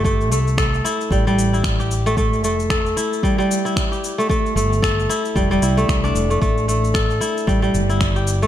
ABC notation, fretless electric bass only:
X:1
M:4/4
L:1/8
Q:"Swing 16ths" 1/4=113
K:Am
V:1 name="Fretless electric bass" clef=bass
G,,, C,,2 z A,,,4- | A,,, F,,,2 z4 z | z G,,,2 z F,,, C,, C,, F,,, | A,,,3 z A,,, G,,,3 |]